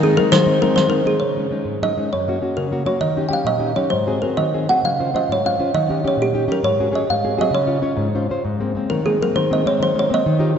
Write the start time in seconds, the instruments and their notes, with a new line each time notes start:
Already playing: nylon-string guitar D#3, mandolin D#4
0.03 nylon-string guitar G#3 C4 D#4, kalimba G#4
0.17 nylon-string guitar G#3 C4 D#4, kalimba A#4
0.32 nylon-string guitar D#3, kalimba C5, riq
0.46 nylon-string guitar G#3 C4 D#4
0.62 nylon-string guitar G#3 C4 D#4, kalimba A#4
0.76 nylon-string guitar D#3, kalimba C5, riq
0.89 nylon-string guitar G#3 C4 D#4, kalimba A#4
1.05 nylon-string guitar G#3 C4 D#4, kalimba G#4
1.20 nylon-string guitar C#3, kalimba C#5
1.37 nylon-string guitar G#3 C#4 D#4
1.51 nylon-string guitar G#3 C#4 D#4
1.65 nylon-string guitar G#2
1.82 nylon-string guitar G#3 C#4 D#4, kalimba D#5
1.97 nylon-string guitar G#3 C#4 D#4
2.13 nylon-string guitar F#2, kalimba C#5
2.28 nylon-string guitar A#3 C#4 F#4
2.41 nylon-string guitar A#3 C#4 F#4
2.57 nylon-string guitar C#3, kalimba A#4
2.71 nylon-string guitar A#3 C#4 F#4
2.86 nylon-string guitar A#3 C#4 F#4, kalimba C#5
3.01 nylon-string guitar D#3, kalimba D#5
3.17 nylon-string guitar C#4 D#4 G4
3.29 nylon-string guitar C#4 D#4 G4, kalimba G5
3.33 kalimba F5
3.45 nylon-string guitar A#2, kalimba D#5
3.59 nylon-string guitar C#4 D#4 G4
3.76 nylon-string guitar C#4 D#4 G4, kalimba C#5
3.90 nylon-string guitar G#2, kalimba C5
4.07 nylon-string guitar C4 F#4 G#4
4.22 nylon-string guitar C4 F#4 G#4, kalimba A#4
4.37 nylon-string guitar D#3, kalimba D#5
4.54 nylon-string guitar C4 F#4 G#4
4.69 nylon-string guitar C4 F#4 G#4, kalimba F#5
4.83 nylon-string guitar C#3, kalimba F5
4.99 nylon-string guitar C#4 F4 C5
5.14 nylon-string guitar C#4 F4 C5, kalimba D#5
5.29 nylon-string guitar G#2, kalimba C#5
5.45 nylon-string guitar C#4 F4 C5, kalimba F5
5.59 nylon-string guitar C#4 F4 C5
5.74 nylon-string guitar D#3, kalimba D#5
5.88 nylon-string guitar C#4 D#4 G4
6.04 nylon-string guitar C#4 D#4 G4, kalimba C#5
6.17 nylon-string guitar A#2
6.22 kalimba G4
6.33 nylon-string guitar C#4 D#4 G4
6.48 nylon-string guitar C#4 D#4 G4, kalimba A#4
6.63 nylon-string guitar G#2, kalimba C#5
6.80 nylon-string guitar C#4 F#4 G#4
6.92 nylon-string guitar C#4 F#4 G#4, kalimba D#5
7.10 nylon-string guitar G#2, kalimba F5
7.24 nylon-string guitar C4 F#4 G#4
7.37 nylon-string guitar C4 F#4 G#4, kalimba D#5
7.51 nylon-string guitar C#3, kalimba C#5
7.67 nylon-string guitar C#4 F4 C#5
7.82 nylon-string guitar C#4 F4 C#5
7.97 nylon-string guitar G#2
8.15 nylon-string guitar C#4 F4 C5
8.29 nylon-string guitar C#4 F4 C5
8.45 nylon-string guitar G#2
8.60 nylon-string guitar G#3 A#3 C4
8.75 nylon-string guitar G#3 A#3 C4
8.90 nylon-string guitar D#3, kalimba A#4
9.05 nylon-string guitar G#3 A#3 C4, kalimba G#4
9.21 nylon-string guitar G#3 A#3 C4, kalimba A#4
9.36 nylon-string guitar D#3, kalimba C5
9.50 nylon-string guitar G#3 A#3 C4, kalimba D#5
9.65 nylon-string guitar G#3 A#3 C4, kalimba C#5
9.80 nylon-string guitar D#3, kalimba C5
9.95 nylon-string guitar G#3 A#3 C4
9.99 kalimba C#5
10.10 nylon-string guitar G#3 A#3 C4
10.14 kalimba D#5
10.26 nylon-string guitar D#3
10.39 nylon-string guitar D#4 F4 G4
10.55 nylon-string guitar D#4